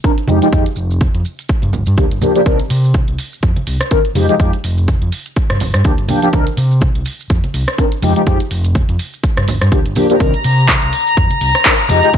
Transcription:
0.04 analog polysynth D#3 C4 D4 A#4, kick, closed hi-hat, maracas
0.18 closed hi-hat
0.28 fingered electric bass F2, analog polysynth F3 G#3 D#4 G4, high conga, maracas
0.41 analog polysynth F3 G#3 D#4 G4, closed hi-hat, maracas
0.52 fingered electric bass F2, analog polysynth F3 G#3 D#4 G4, kick, closed hi-hat, maracas
0.66 closed hi-hat
0.76 fingered electric bass F1, maracas
0.91 maracas
1.01 kick, closed hi-hat, high conga, maracas
1.14 fingered electric bass F2, closed hi-hat
1.25 maracas
1.39 closed hi-hat, maracas
1.49 kick, closed hi-hat, maracas
1.62 fingered electric bass G2, closed hi-hat, high conga
1.73 fingered electric bass G1, low conga, maracas
1.86 fingered electric bass G2, closed hi-hat, maracas
1.97 fingered electric bass D2, analog polysynth F3 A#3 D4 G4, kick, closed hi-hat, maracas
2.11 fingered electric bass G1, closed hi-hat
2.21 analog polysynth F3 A#3 D4 G4, high conga, low conga, maracas
2.35 analog polysynth F3 A#3 D4 G4, closed hi-hat, maracas
2.46 fingered electric bass C2, analog polysynth D#3 C4 D4 A#4, kick, closed hi-hat, maracas
2.60 closed hi-hat
2.70 fingered electric bass C3, open hi-hat, maracas
2.85 maracas
2.94 kick, closed hi-hat, high conga, maracas
3.08 fingered electric bass C2, closed hi-hat
3.19 open hi-hat, maracas
3.33 maracas
3.43 fingered electric bass F2, kick, closed hi-hat, low conga, maracas
3.56 closed hi-hat, high conga
3.67 fingered electric bass C2, open hi-hat, maracas
3.80 cross-stick, closed hi-hat, maracas
3.91 analog polysynth D#3 C4 D4 A#4, kick, closed hi-hat, maracas
4.05 closed hi-hat
4.15 fingered electric bass F2, analog polysynth F3 G#3 D#4 G4, open hi-hat, high conga, maracas
4.29 analog polysynth F3 G#3 D#4 G4, closed hi-hat, maracas
4.39 fingered electric bass F2, analog polysynth F3 G#3 D#4 G4, kick, closed hi-hat, maracas
4.53 closed hi-hat
4.64 fingered electric bass F1, open hi-hat, maracas
4.78 maracas
4.88 kick, closed hi-hat, high conga, maracas
5.01 fingered electric bass F2, closed hi-hat
5.12 open hi-hat, maracas
5.26 closed hi-hat, maracas
5.36 kick, closed hi-hat, maracas
5.50 fingered electric bass G2, cross-stick, closed hi-hat, high conga
5.60 fingered electric bass G1, open hi-hat, low conga, maracas
5.74 fingered electric bass G2, cross-stick, closed hi-hat, maracas
5.84 fingered electric bass D2, analog polysynth F3 A#3 D4 G4, kick, closed hi-hat, maracas
5.98 fingered electric bass G1, closed hi-hat
6.08 analog polysynth F3 A#3 D4 G4, open hi-hat, high conga, low conga, maracas
6.22 analog polysynth F3 A#3 D4 G4, closed hi-hat, maracas
6.33 fingered electric bass C2, analog polysynth D#3 C4 D4 A#4, kick, closed hi-hat, maracas
6.47 closed hi-hat
6.57 fingered electric bass C3, open hi-hat, maracas
6.71 maracas
6.81 kick, closed hi-hat, high conga, maracas
6.95 fingered electric bass C2, closed hi-hat
7.05 open hi-hat, maracas
7.20 maracas
7.30 fingered electric bass F2, kick, closed hi-hat, low conga, maracas
7.44 closed hi-hat, high conga
7.54 fingered electric bass C2, open hi-hat, maracas
7.67 cross-stick, closed hi-hat, maracas
7.78 analog polysynth D#3 C4 D4 A#4, kick, closed hi-hat, maracas
7.92 closed hi-hat
8.02 fingered electric bass F2, analog polysynth F3 G#3 D#4 G4, open hi-hat, high conga, maracas
8.16 analog polysynth F3 G#3 D#4 G4, closed hi-hat, maracas
8.26 fingered electric bass F2, analog polysynth F3 G#3 D#4 G4, kick, closed hi-hat, maracas
8.40 closed hi-hat
8.51 fingered electric bass F1, open hi-hat, maracas
8.64 closed hi-hat, maracas
8.75 kick, closed hi-hat, high conga, maracas
8.89 fingered electric bass F2, closed hi-hat
8.99 open hi-hat, maracas
9.13 maracas
9.23 kick, closed hi-hat, maracas
9.37 fingered electric bass G2, cross-stick, closed hi-hat, high conga
9.48 fingered electric bass G1, open hi-hat, low conga, maracas
9.61 fingered electric bass G2, cross-stick, closed hi-hat, maracas
9.72 fingered electric bass D2, analog polysynth F3 A#3 D4 G4, kick, closed hi-hat, maracas
9.86 fingered electric bass G1, closed hi-hat
9.96 analog polysynth F3 A#3 D4 G4, open hi-hat, high conga, low conga, maracas
10.09 analog polysynth F3 A#3 D4 G4, closed hi-hat, maracas
10.20 fingered electric bass C2, analog polysynth D#3 C4 D4 A#4, violin section A#5, kick, closed hi-hat, maracas
10.34 closed hi-hat
10.44 fingered electric bass C3, open hi-hat, maracas
10.58 maracas
10.68 kick, clap, closed hi-hat, high conga, maracas
10.82 fingered electric bass C2, closed hi-hat
10.93 open hi-hat, maracas
11.07 maracas
11.16 fingered electric bass F2, kick, closed hi-hat, low conga, maracas
11.30 closed hi-hat, high conga
11.41 fingered electric bass C2, open hi-hat, maracas
11.55 cross-stick, closed hi-hat, maracas
11.65 analog polysynth D#3 C4 D4 A#4, kick, clap, closed hi-hat
11.79 closed hi-hat
11.89 fingered electric bass F2, analog polysynth F3 G#3 D#4 G4, open hi-hat, high conga, maracas
12.03 analog polysynth F3 G#3 D#4 G4, closed hi-hat, maracas
12.13 fingered electric bass F2, analog polysynth F3 G#3 D#4 G4, kick, closed hi-hat, maracas

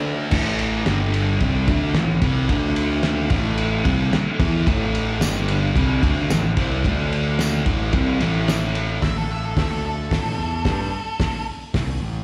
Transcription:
Already playing: picked electric bass D3, distorted electric guitar D3 A3 D4
0.31 picked electric bass A1, distorted electric guitar A2 E3 A3, kick, crash
0.59 ride
0.86 picked electric bass G1, distorted electric guitar G2 D3 G3, snare, ride
1.14 ride
1.40 picked electric bass C2, distorted electric guitar C3 G3 C4, kick, ride
1.68 picked electric bass D2, distorted electric guitar D3 A3 D4, kick, ride
1.94 picked electric bass A1, distorted electric guitar A2 E3, snare, ride
2.22 picked electric bass C2, distorted electric guitar C3 G3 C4, kick, ride
2.49 picked electric bass D2, distorted electric guitar D3 A3 D4, kick, ride
2.76 ride
3.03 snare, ride
3.30 picked electric bass A1, distorted electric guitar A2 E3 A3, kick, ride
3.58 ride
3.85 picked electric bass C2, distorted electric guitar C3 G3 C4, kick, ride
4.12 muted distorted electric guitar stroke, muted picked electric bass stroke, snare, ride
4.39 picked electric bass E2, distorted electric guitar E3 B3 E4, kick, ride
4.67 picked electric bass A1, distorted electric guitar A2 E3 A3, kick, ride
4.95 ride
5.20 picked electric bass G1, distorted electric guitar G2 D3 G3, snare, ride, tambourine
5.48 ride
5.76 picked electric bass C2, distorted electric guitar C3 G3 C4, kick, ride
6.02 picked electric bass D2, distorted electric guitar D3 A3 D4, kick, ride
6.30 picked electric bass A1, distorted electric guitar A2 E3, snare, ride, tambourine
6.57 picked electric bass C2, distorted electric guitar C3 G3 C4, kick, ride
6.84 picked electric bass D2, distorted electric guitar D3 A3 D4, kick, ride
7.13 ride
7.39 snare, ride, tambourine
7.66 picked electric bass A1, distorted electric guitar A2 E3 A3, kick, ride
7.93 picked electric bass C2, distorted electric guitar C3 G3 C4, kick, ride
8.20 picked electric bass A1, distorted electric guitar A2 E3 A3, ride
8.48 snare, ride, tambourine
8.75 ride
9.02 picked electric bass A1, lead electric guitar E5, kick, snare, open hi-hat
9.18 lead electric guitar A4
9.31 lead electric guitar E5
9.45 lead electric guitar A4
9.56 picked electric bass D2, lead electric guitar E5, kick, snare, open hi-hat
9.70 lead electric guitar A4
9.86 lead electric guitar A4
10.11 picked electric bass A1, kick, snare, open hi-hat
10.38 picked electric bass E2
10.65 picked electric bass G2, kick, snare, open hi-hat
11.20 kick, snare, open hi-hat
11.74 picked electric bass C2, kick, snare, open hi-hat
12.01 picked electric bass A1

